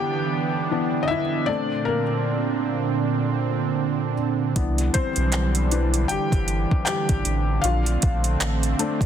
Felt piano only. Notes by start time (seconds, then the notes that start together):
Already playing: E3 B3 D4 G4 G5
0.71 E3 B3 D4
1.03 D#5
1.08 E4 E5
1.46 A3 C4 D4 D5
1.85 A#3 A#4
4.56 E3 B3 D4
4.94 C4 C5
5.71 E3 D4 B4
6.08 G4 G5
6.85 G4 G5
7.62 F4 F5
8.79 A3 C4 D4